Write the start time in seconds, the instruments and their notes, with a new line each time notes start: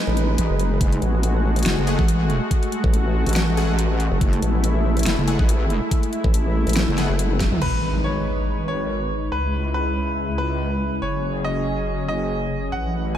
Already playing: analog synth pad G#3 D#4 B4
0.07 wobble bass A1
0.17 closed hi-hat
0.38 wobble bass A1, closed hi-hat
0.50 wobble bass F#1
0.59 closed hi-hat
0.81 wobble bass F#1, analog synth pad A3 F#4, kick, closed hi-hat
0.92 closed hi-hat
1.02 wobble bass A1, closed hi-hat
1.23 closed hi-hat
1.56 closed hi-hat
1.59 closed hi-hat
1.63 wobble bass F#1, snare, closed hi-hat
1.66 closed hi-hat
1.77 wobble bass F#1
1.87 supersaw synth A3 G#4 F#5, closed hi-hat
1.99 wobble bass A1, kick
2.08 closed hi-hat
2.30 closed hi-hat
2.51 kick, closed hi-hat
2.63 closed hi-hat
2.72 closed hi-hat
2.84 wobble bass A1, kick
2.94 closed hi-hat
3.26 wobble bass A1, closed hi-hat
3.29 closed hi-hat
3.33 snare, closed hi-hat
3.36 closed hi-hat
3.57 supersaw synth A3 G#4 F#5, closed hi-hat
3.79 closed hi-hat
4.00 closed hi-hat
4.12 wobble bass F#1
4.21 wobble bass F#1, analog synth pad E4, kick, closed hi-hat
4.33 closed hi-hat
4.42 wobble bass A1, closed hi-hat
4.64 closed hi-hat
4.97 closed hi-hat
4.99 closed hi-hat
5.03 wobble bass F#1, snare, closed hi-hat
5.06 closed hi-hat
5.18 wobble bass F#1
5.28 supersaw synth A3 G#4 F#5, closed hi-hat
5.39 wobble bass A1, kick
5.49 closed hi-hat
5.70 closed hi-hat
5.91 kick, closed hi-hat
6.03 closed hi-hat
6.13 closed hi-hat
6.24 wobble bass A1, kick
6.34 closed hi-hat
6.67 wobble bass A1, closed hi-hat
6.69 closed hi-hat
6.73 snare, closed hi-hat
6.76 closed hi-hat
6.88 wobble bass F#1
6.98 supersaw synth A3 G#4 F#5, snare, closed hi-hat
7.09 wobble bass F#1
7.19 closed hi-hat
7.31 high tom
7.40 kick, snare, closed hi-hat
7.52 wobble bass C#2, mid tom
7.62 wobble bass G#1, analog synth pad G#3 D#4 B4, grand piano B4, crash, impact
8.04 grand piano C#5
8.68 grand piano C#5
9.32 wobble bass C#2, analog synth pad C#3 G#3 E4, grand piano B4
9.74 grand piano B4
10.38 grand piano B4
11.02 wobble bass F#1, analog synth pad F#3 C#4 G#4, grand piano C#5
11.45 grand piano D#5
12.09 grand piano D#5
12.72 wobble bass A1, analog synth pad A3 E4 B4, grand piano F#5